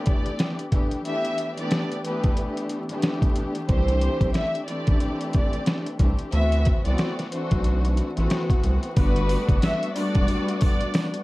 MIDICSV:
0, 0, Header, 1, 6, 480
1, 0, Start_track
1, 0, Key_signature, 1, "major"
1, 0, Tempo, 659341
1, 766, Time_signature, 4, 2, 24, 8
1, 8179, End_track
2, 0, Start_track
2, 0, Title_t, "Tonewheel organ"
2, 0, Program_c, 0, 16
2, 6523, Note_on_c, 0, 71, 75
2, 6523, Note_on_c, 0, 74, 66
2, 6523, Note_on_c, 0, 78, 67
2, 6524, Note_on_c, 0, 86, 77
2, 8179, Note_off_c, 0, 71, 0
2, 8179, Note_off_c, 0, 74, 0
2, 8179, Note_off_c, 0, 78, 0
2, 8179, Note_off_c, 0, 86, 0
2, 8179, End_track
3, 0, Start_track
3, 0, Title_t, "Violin section"
3, 0, Program_c, 1, 48
3, 50, Note_on_c, 1, 74, 80
3, 409, Note_off_c, 1, 74, 0
3, 766, Note_on_c, 1, 76, 109
3, 1127, Note_off_c, 1, 76, 0
3, 1152, Note_on_c, 1, 74, 85
3, 1467, Note_off_c, 1, 74, 0
3, 1489, Note_on_c, 1, 71, 82
3, 1849, Note_off_c, 1, 71, 0
3, 2686, Note_on_c, 1, 72, 114
3, 3137, Note_off_c, 1, 72, 0
3, 3165, Note_on_c, 1, 76, 97
3, 3382, Note_off_c, 1, 76, 0
3, 3405, Note_on_c, 1, 74, 82
3, 3857, Note_off_c, 1, 74, 0
3, 3886, Note_on_c, 1, 74, 82
3, 4247, Note_off_c, 1, 74, 0
3, 4606, Note_on_c, 1, 76, 120
3, 4967, Note_off_c, 1, 76, 0
3, 4987, Note_on_c, 1, 74, 87
3, 5304, Note_off_c, 1, 74, 0
3, 5331, Note_on_c, 1, 72, 84
3, 5690, Note_off_c, 1, 72, 0
3, 6527, Note_on_c, 1, 71, 106
3, 6978, Note_off_c, 1, 71, 0
3, 7004, Note_on_c, 1, 76, 89
3, 7221, Note_off_c, 1, 76, 0
3, 7240, Note_on_c, 1, 74, 94
3, 7694, Note_off_c, 1, 74, 0
3, 7726, Note_on_c, 1, 74, 91
3, 8087, Note_off_c, 1, 74, 0
3, 8179, End_track
4, 0, Start_track
4, 0, Title_t, "String section"
4, 0, Program_c, 2, 48
4, 0, Note_on_c, 2, 52, 103
4, 0, Note_on_c, 2, 57, 94
4, 0, Note_on_c, 2, 59, 89
4, 0, Note_on_c, 2, 62, 85
4, 0, Note_on_c, 2, 67, 109
4, 452, Note_off_c, 2, 52, 0
4, 455, Note_off_c, 2, 57, 0
4, 457, Note_off_c, 2, 59, 0
4, 460, Note_off_c, 2, 62, 0
4, 462, Note_off_c, 2, 67, 0
4, 507, Note_on_c, 2, 52, 78
4, 514, Note_on_c, 2, 57, 70
4, 519, Note_on_c, 2, 59, 70
4, 524, Note_on_c, 2, 62, 68
4, 530, Note_on_c, 2, 67, 88
4, 740, Note_off_c, 2, 52, 0
4, 745, Note_off_c, 2, 57, 0
4, 747, Note_off_c, 2, 59, 0
4, 748, Note_on_c, 2, 52, 96
4, 750, Note_off_c, 2, 62, 0
4, 753, Note_off_c, 2, 67, 0
4, 753, Note_on_c, 2, 57, 88
4, 758, Note_on_c, 2, 59, 84
4, 764, Note_on_c, 2, 62, 86
4, 769, Note_on_c, 2, 67, 107
4, 1107, Note_off_c, 2, 52, 0
4, 1109, Note_off_c, 2, 57, 0
4, 1112, Note_off_c, 2, 59, 0
4, 1114, Note_off_c, 2, 62, 0
4, 1117, Note_off_c, 2, 67, 0
4, 1138, Note_on_c, 2, 52, 92
4, 1143, Note_on_c, 2, 57, 86
4, 1149, Note_on_c, 2, 59, 91
4, 1153, Note_on_c, 2, 62, 89
4, 1159, Note_on_c, 2, 67, 110
4, 1457, Note_off_c, 2, 52, 0
4, 1460, Note_off_c, 2, 57, 0
4, 1463, Note_off_c, 2, 59, 0
4, 1465, Note_off_c, 2, 62, 0
4, 1467, Note_off_c, 2, 67, 0
4, 1477, Note_on_c, 2, 52, 103
4, 1483, Note_on_c, 2, 57, 92
4, 1488, Note_on_c, 2, 59, 90
4, 1493, Note_on_c, 2, 62, 88
4, 1498, Note_on_c, 2, 67, 100
4, 2048, Note_off_c, 2, 52, 0
4, 2051, Note_off_c, 2, 57, 0
4, 2053, Note_off_c, 2, 59, 0
4, 2056, Note_off_c, 2, 62, 0
4, 2058, Note_off_c, 2, 67, 0
4, 2098, Note_on_c, 2, 52, 97
4, 2103, Note_on_c, 2, 57, 90
4, 2108, Note_on_c, 2, 59, 93
4, 2113, Note_on_c, 2, 62, 89
4, 2119, Note_on_c, 2, 67, 104
4, 2642, Note_off_c, 2, 52, 0
4, 2644, Note_off_c, 2, 57, 0
4, 2647, Note_off_c, 2, 59, 0
4, 2649, Note_off_c, 2, 62, 0
4, 2652, Note_off_c, 2, 67, 0
4, 2670, Note_on_c, 2, 52, 101
4, 2676, Note_on_c, 2, 57, 91
4, 2681, Note_on_c, 2, 60, 90
4, 2687, Note_on_c, 2, 62, 91
4, 2693, Note_on_c, 2, 67, 115
4, 3352, Note_off_c, 2, 52, 0
4, 3355, Note_off_c, 2, 57, 0
4, 3358, Note_off_c, 2, 60, 0
4, 3360, Note_off_c, 2, 62, 0
4, 3363, Note_off_c, 2, 67, 0
4, 3393, Note_on_c, 2, 52, 99
4, 3400, Note_on_c, 2, 57, 99
4, 3405, Note_on_c, 2, 60, 91
4, 3410, Note_on_c, 2, 62, 91
4, 3416, Note_on_c, 2, 67, 110
4, 4298, Note_off_c, 2, 52, 0
4, 4302, Note_off_c, 2, 57, 0
4, 4304, Note_off_c, 2, 60, 0
4, 4307, Note_off_c, 2, 62, 0
4, 4310, Note_off_c, 2, 67, 0
4, 4353, Note_on_c, 2, 52, 77
4, 4358, Note_on_c, 2, 57, 68
4, 4365, Note_on_c, 2, 60, 69
4, 4369, Note_on_c, 2, 62, 68
4, 4376, Note_on_c, 2, 67, 81
4, 4584, Note_off_c, 2, 52, 0
4, 4587, Note_off_c, 2, 57, 0
4, 4590, Note_off_c, 2, 60, 0
4, 4592, Note_off_c, 2, 62, 0
4, 4592, Note_on_c, 2, 52, 100
4, 4596, Note_off_c, 2, 67, 0
4, 4599, Note_on_c, 2, 57, 91
4, 4604, Note_on_c, 2, 59, 80
4, 4609, Note_on_c, 2, 60, 92
4, 4613, Note_on_c, 2, 66, 102
4, 4949, Note_off_c, 2, 52, 0
4, 4952, Note_off_c, 2, 57, 0
4, 4954, Note_off_c, 2, 59, 0
4, 4957, Note_off_c, 2, 60, 0
4, 4959, Note_off_c, 2, 66, 0
4, 4978, Note_on_c, 2, 52, 94
4, 4983, Note_on_c, 2, 57, 88
4, 4988, Note_on_c, 2, 59, 83
4, 4993, Note_on_c, 2, 60, 87
4, 4999, Note_on_c, 2, 66, 101
4, 5297, Note_off_c, 2, 52, 0
4, 5299, Note_off_c, 2, 57, 0
4, 5302, Note_off_c, 2, 59, 0
4, 5305, Note_off_c, 2, 60, 0
4, 5307, Note_off_c, 2, 66, 0
4, 5321, Note_on_c, 2, 52, 103
4, 5328, Note_on_c, 2, 57, 92
4, 5332, Note_on_c, 2, 62, 88
4, 5338, Note_on_c, 2, 60, 90
4, 5343, Note_on_c, 2, 66, 111
4, 5890, Note_off_c, 2, 52, 0
4, 5894, Note_off_c, 2, 57, 0
4, 5896, Note_off_c, 2, 62, 0
4, 5899, Note_off_c, 2, 60, 0
4, 5901, Note_off_c, 2, 66, 0
4, 5938, Note_on_c, 2, 52, 98
4, 5942, Note_on_c, 2, 57, 88
4, 5948, Note_on_c, 2, 59, 87
4, 5953, Note_on_c, 2, 60, 93
4, 5958, Note_on_c, 2, 66, 112
4, 6482, Note_off_c, 2, 52, 0
4, 6484, Note_off_c, 2, 57, 0
4, 6487, Note_off_c, 2, 59, 0
4, 6489, Note_off_c, 2, 60, 0
4, 6492, Note_off_c, 2, 66, 0
4, 6509, Note_on_c, 2, 55, 104
4, 6514, Note_on_c, 2, 57, 92
4, 6520, Note_on_c, 2, 59, 104
4, 6525, Note_on_c, 2, 62, 96
4, 6530, Note_on_c, 2, 66, 122
4, 7192, Note_off_c, 2, 55, 0
4, 7194, Note_off_c, 2, 57, 0
4, 7197, Note_off_c, 2, 59, 0
4, 7200, Note_off_c, 2, 62, 0
4, 7202, Note_off_c, 2, 66, 0
4, 7231, Note_on_c, 2, 55, 114
4, 7236, Note_on_c, 2, 57, 89
4, 7241, Note_on_c, 2, 59, 98
4, 7246, Note_on_c, 2, 62, 100
4, 7251, Note_on_c, 2, 66, 119
4, 8137, Note_off_c, 2, 55, 0
4, 8140, Note_off_c, 2, 57, 0
4, 8142, Note_off_c, 2, 59, 0
4, 8145, Note_off_c, 2, 62, 0
4, 8147, Note_off_c, 2, 66, 0
4, 8179, End_track
5, 0, Start_track
5, 0, Title_t, "Sub bass"
5, 0, Program_c, 3, 38
5, 2688, Note_on_c, 3, 36, 112
5, 2976, Note_off_c, 3, 36, 0
5, 3065, Note_on_c, 3, 35, 89
5, 3139, Note_off_c, 3, 35, 0
5, 3552, Note_on_c, 3, 33, 98
5, 3624, Note_off_c, 3, 33, 0
5, 4367, Note_on_c, 3, 36, 89
5, 4475, Note_off_c, 3, 36, 0
5, 4608, Note_on_c, 3, 38, 103
5, 4896, Note_off_c, 3, 38, 0
5, 4993, Note_on_c, 3, 36, 83
5, 5064, Note_off_c, 3, 36, 0
5, 5473, Note_on_c, 3, 35, 94
5, 5833, Note_off_c, 3, 35, 0
5, 5954, Note_on_c, 3, 33, 89
5, 6025, Note_off_c, 3, 33, 0
5, 6287, Note_on_c, 3, 36, 87
5, 6395, Note_off_c, 3, 36, 0
5, 6531, Note_on_c, 3, 31, 109
5, 6818, Note_off_c, 3, 31, 0
5, 6907, Note_on_c, 3, 30, 96
5, 6980, Note_off_c, 3, 30, 0
5, 7393, Note_on_c, 3, 28, 93
5, 7464, Note_off_c, 3, 28, 0
5, 8179, End_track
6, 0, Start_track
6, 0, Title_t, "Drums"
6, 42, Note_on_c, 9, 42, 70
6, 51, Note_on_c, 9, 36, 92
6, 114, Note_off_c, 9, 42, 0
6, 124, Note_off_c, 9, 36, 0
6, 187, Note_on_c, 9, 42, 47
6, 260, Note_off_c, 9, 42, 0
6, 283, Note_on_c, 9, 42, 87
6, 291, Note_on_c, 9, 38, 113
6, 356, Note_off_c, 9, 42, 0
6, 363, Note_off_c, 9, 38, 0
6, 430, Note_on_c, 9, 42, 55
6, 502, Note_off_c, 9, 42, 0
6, 524, Note_on_c, 9, 42, 74
6, 526, Note_on_c, 9, 36, 82
6, 597, Note_off_c, 9, 42, 0
6, 599, Note_off_c, 9, 36, 0
6, 665, Note_on_c, 9, 42, 50
6, 738, Note_off_c, 9, 42, 0
6, 765, Note_on_c, 9, 42, 63
6, 838, Note_off_c, 9, 42, 0
6, 908, Note_on_c, 9, 42, 58
6, 981, Note_off_c, 9, 42, 0
6, 1004, Note_on_c, 9, 42, 73
6, 1077, Note_off_c, 9, 42, 0
6, 1146, Note_on_c, 9, 42, 52
6, 1219, Note_off_c, 9, 42, 0
6, 1243, Note_on_c, 9, 42, 88
6, 1250, Note_on_c, 9, 38, 108
6, 1316, Note_off_c, 9, 42, 0
6, 1322, Note_off_c, 9, 38, 0
6, 1395, Note_on_c, 9, 42, 49
6, 1468, Note_off_c, 9, 42, 0
6, 1489, Note_on_c, 9, 42, 71
6, 1562, Note_off_c, 9, 42, 0
6, 1627, Note_on_c, 9, 42, 48
6, 1632, Note_on_c, 9, 36, 97
6, 1700, Note_off_c, 9, 42, 0
6, 1705, Note_off_c, 9, 36, 0
6, 1724, Note_on_c, 9, 42, 84
6, 1797, Note_off_c, 9, 42, 0
6, 1872, Note_on_c, 9, 42, 56
6, 1945, Note_off_c, 9, 42, 0
6, 1962, Note_on_c, 9, 42, 65
6, 2034, Note_off_c, 9, 42, 0
6, 2106, Note_on_c, 9, 42, 46
6, 2178, Note_off_c, 9, 42, 0
6, 2201, Note_on_c, 9, 42, 92
6, 2209, Note_on_c, 9, 38, 111
6, 2274, Note_off_c, 9, 42, 0
6, 2282, Note_off_c, 9, 38, 0
6, 2344, Note_on_c, 9, 36, 100
6, 2347, Note_on_c, 9, 42, 54
6, 2417, Note_off_c, 9, 36, 0
6, 2420, Note_off_c, 9, 42, 0
6, 2443, Note_on_c, 9, 42, 77
6, 2516, Note_off_c, 9, 42, 0
6, 2584, Note_on_c, 9, 42, 49
6, 2657, Note_off_c, 9, 42, 0
6, 2684, Note_on_c, 9, 42, 63
6, 2687, Note_on_c, 9, 36, 114
6, 2757, Note_off_c, 9, 42, 0
6, 2760, Note_off_c, 9, 36, 0
6, 2827, Note_on_c, 9, 42, 59
6, 2900, Note_off_c, 9, 42, 0
6, 2922, Note_on_c, 9, 42, 75
6, 2995, Note_off_c, 9, 42, 0
6, 3064, Note_on_c, 9, 36, 103
6, 3064, Note_on_c, 9, 42, 55
6, 3137, Note_off_c, 9, 36, 0
6, 3137, Note_off_c, 9, 42, 0
6, 3162, Note_on_c, 9, 42, 86
6, 3168, Note_on_c, 9, 38, 102
6, 3234, Note_off_c, 9, 42, 0
6, 3241, Note_off_c, 9, 38, 0
6, 3312, Note_on_c, 9, 42, 49
6, 3385, Note_off_c, 9, 42, 0
6, 3406, Note_on_c, 9, 42, 70
6, 3479, Note_off_c, 9, 42, 0
6, 3545, Note_on_c, 9, 42, 47
6, 3551, Note_on_c, 9, 36, 94
6, 3618, Note_off_c, 9, 42, 0
6, 3624, Note_off_c, 9, 36, 0
6, 3642, Note_on_c, 9, 42, 85
6, 3715, Note_off_c, 9, 42, 0
6, 3791, Note_on_c, 9, 42, 56
6, 3863, Note_off_c, 9, 42, 0
6, 3882, Note_on_c, 9, 42, 69
6, 3892, Note_on_c, 9, 36, 94
6, 3955, Note_off_c, 9, 42, 0
6, 3964, Note_off_c, 9, 36, 0
6, 4026, Note_on_c, 9, 42, 47
6, 4099, Note_off_c, 9, 42, 0
6, 4122, Note_on_c, 9, 42, 92
6, 4130, Note_on_c, 9, 38, 110
6, 4195, Note_off_c, 9, 42, 0
6, 4202, Note_off_c, 9, 38, 0
6, 4269, Note_on_c, 9, 42, 54
6, 4342, Note_off_c, 9, 42, 0
6, 4363, Note_on_c, 9, 42, 77
6, 4366, Note_on_c, 9, 36, 81
6, 4436, Note_off_c, 9, 42, 0
6, 4438, Note_off_c, 9, 36, 0
6, 4504, Note_on_c, 9, 42, 49
6, 4577, Note_off_c, 9, 42, 0
6, 4604, Note_on_c, 9, 42, 64
6, 4677, Note_off_c, 9, 42, 0
6, 4747, Note_on_c, 9, 42, 60
6, 4820, Note_off_c, 9, 42, 0
6, 4843, Note_on_c, 9, 42, 75
6, 4854, Note_on_c, 9, 36, 96
6, 4916, Note_off_c, 9, 42, 0
6, 4927, Note_off_c, 9, 36, 0
6, 4987, Note_on_c, 9, 42, 55
6, 5060, Note_off_c, 9, 42, 0
6, 5082, Note_on_c, 9, 42, 90
6, 5089, Note_on_c, 9, 38, 104
6, 5155, Note_off_c, 9, 42, 0
6, 5162, Note_off_c, 9, 38, 0
6, 5234, Note_on_c, 9, 42, 50
6, 5238, Note_on_c, 9, 38, 36
6, 5306, Note_off_c, 9, 42, 0
6, 5311, Note_off_c, 9, 38, 0
6, 5329, Note_on_c, 9, 42, 72
6, 5401, Note_off_c, 9, 42, 0
6, 5467, Note_on_c, 9, 42, 51
6, 5472, Note_on_c, 9, 36, 95
6, 5540, Note_off_c, 9, 42, 0
6, 5545, Note_off_c, 9, 36, 0
6, 5564, Note_on_c, 9, 42, 86
6, 5636, Note_off_c, 9, 42, 0
6, 5713, Note_on_c, 9, 42, 56
6, 5786, Note_off_c, 9, 42, 0
6, 5804, Note_on_c, 9, 42, 68
6, 5877, Note_off_c, 9, 42, 0
6, 5948, Note_on_c, 9, 42, 45
6, 6020, Note_off_c, 9, 42, 0
6, 6044, Note_on_c, 9, 42, 91
6, 6051, Note_on_c, 9, 38, 113
6, 6117, Note_off_c, 9, 42, 0
6, 6124, Note_off_c, 9, 38, 0
6, 6186, Note_on_c, 9, 36, 100
6, 6190, Note_on_c, 9, 42, 57
6, 6259, Note_off_c, 9, 36, 0
6, 6263, Note_off_c, 9, 42, 0
6, 6286, Note_on_c, 9, 42, 76
6, 6359, Note_off_c, 9, 42, 0
6, 6427, Note_on_c, 9, 42, 50
6, 6500, Note_off_c, 9, 42, 0
6, 6527, Note_on_c, 9, 42, 69
6, 6527, Note_on_c, 9, 83, 55
6, 6529, Note_on_c, 9, 36, 123
6, 6599, Note_off_c, 9, 42, 0
6, 6599, Note_off_c, 9, 83, 0
6, 6602, Note_off_c, 9, 36, 0
6, 6669, Note_on_c, 9, 42, 62
6, 6742, Note_off_c, 9, 42, 0
6, 6765, Note_on_c, 9, 42, 78
6, 6772, Note_on_c, 9, 83, 71
6, 6838, Note_off_c, 9, 42, 0
6, 6844, Note_off_c, 9, 83, 0
6, 6906, Note_on_c, 9, 36, 110
6, 6908, Note_on_c, 9, 42, 56
6, 6979, Note_off_c, 9, 36, 0
6, 6981, Note_off_c, 9, 42, 0
6, 7005, Note_on_c, 9, 42, 97
6, 7006, Note_on_c, 9, 83, 51
6, 7012, Note_on_c, 9, 38, 112
6, 7078, Note_off_c, 9, 42, 0
6, 7079, Note_off_c, 9, 83, 0
6, 7085, Note_off_c, 9, 38, 0
6, 7155, Note_on_c, 9, 42, 53
6, 7228, Note_off_c, 9, 42, 0
6, 7248, Note_on_c, 9, 83, 72
6, 7249, Note_on_c, 9, 42, 75
6, 7321, Note_off_c, 9, 83, 0
6, 7322, Note_off_c, 9, 42, 0
6, 7387, Note_on_c, 9, 42, 51
6, 7392, Note_on_c, 9, 36, 102
6, 7460, Note_off_c, 9, 42, 0
6, 7465, Note_off_c, 9, 36, 0
6, 7484, Note_on_c, 9, 42, 88
6, 7486, Note_on_c, 9, 83, 41
6, 7557, Note_off_c, 9, 42, 0
6, 7558, Note_off_c, 9, 83, 0
6, 7633, Note_on_c, 9, 42, 58
6, 7705, Note_off_c, 9, 42, 0
6, 7722, Note_on_c, 9, 42, 74
6, 7724, Note_on_c, 9, 83, 73
6, 7732, Note_on_c, 9, 36, 106
6, 7795, Note_off_c, 9, 42, 0
6, 7797, Note_off_c, 9, 83, 0
6, 7805, Note_off_c, 9, 36, 0
6, 7866, Note_on_c, 9, 42, 51
6, 7939, Note_off_c, 9, 42, 0
6, 7962, Note_on_c, 9, 42, 98
6, 7964, Note_on_c, 9, 83, 53
6, 7970, Note_on_c, 9, 38, 117
6, 8035, Note_off_c, 9, 42, 0
6, 8037, Note_off_c, 9, 83, 0
6, 8043, Note_off_c, 9, 38, 0
6, 8108, Note_on_c, 9, 42, 60
6, 8179, Note_off_c, 9, 42, 0
6, 8179, End_track
0, 0, End_of_file